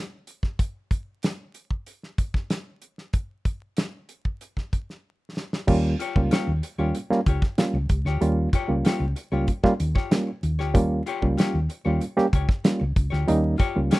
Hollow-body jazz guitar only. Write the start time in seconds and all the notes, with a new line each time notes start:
5.99 F4 G4 C#5
6.31 F4 G4 C#5
6.63 muted hollow-body jazz guitar stroke
6.78 F4 G4 C#5
6.95 muted hollow-body jazz guitar stroke
7.27 F4 G4 C#5
7.42 muted hollow-body jazz guitar stroke
7.59 muted hollow-body jazz guitar stroke
7.75 muted hollow-body jazz guitar stroke
8.06 F4 G4 C#5
8.53 F4 G4 C#5
8.85 F4 G4 C#5
9.16 muted hollow-body jazz guitar stroke
9.32 F4 G4 C#5
9.47 muted hollow-body jazz guitar stroke
9.63 muted hollow-body jazz guitar stroke
9.95 F4 G4 C#5
10.11 muted hollow-body jazz guitar stroke
10.27 muted hollow-body jazz guitar stroke
10.59 F4 G4 C#5
11.06 F4 G4 C#5
11.38 F4 G4 C#5
11.69 muted hollow-body jazz guitar stroke
11.85 F4 G4 C#5
12.01 muted hollow-body jazz guitar stroke
12.33 F4 G4 C#5
12.49 muted hollow-body jazz guitar stroke
12.64 muted hollow-body jazz guitar stroke
12.80 muted hollow-body jazz guitar stroke
13.10 F4 G4 C#5
13.58 F4 G4 C#5
13.91 F4 G4 C#5